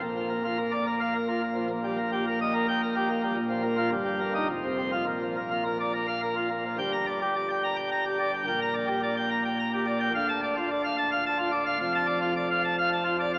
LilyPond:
<<
  \new Staff \with { instrumentName = "Pipe organ" } { \time 3/4 \key ees \lydian \tempo 4 = 108 r4. r16 f''16 r4 | r4. r16 g''16 r4 | r8. f'16 r8. ees'16 r8. f'16 | r4. r16 f''16 r4 |
\key g \minor g''16 bes''16 d''16 g'16 d''16 g''16 bes''16 g''16 bes''16 g'16 d''16 g''16 | g''16 bes''16 d''16 g'16 d''16 g''16 bes''16 g''16 bes''16 g'16 d''16 g''16 | f''16 a''16 d''16 f'16 d''16 f''16 a''16 f''16 a''16 f'16 d''16 f''16 | f''16 a''16 d''16 f'16 d''16 f''16 a''16 f''16 a''16 f'16 d''16 f''16 | }
  \new Staff \with { instrumentName = "Pipe organ" } { \clef bass \time 3/4 \key ees \lydian << { bes,16 f16 bes16 f'16 bes'16 d''16 bes'16 r16 bes'16 f'16 bes16 f16 | bes,16 g16 bes16 g'16 bes'16 ees''16 bes'16 r16 bes'16 g'16 bes16 g16 | bes,16 f16 bes16 r16 g,16 g16 bes16 r16 f,16 c16 c'16 r16 | bes,16 f16 bes16 f'16 bes'16 d''16 bes'16 r16 bes'16 f'16 bes16 f16 |
\key g \minor g,2. | bes,2. | d,2. | f,2. | } \\ { bes,,2. | bes,,2. | bes,,4 g,,4 f,,4 | bes,,2. |
g,,2. | bes,,2. | d,,2. | f,,2. | } >> }
>>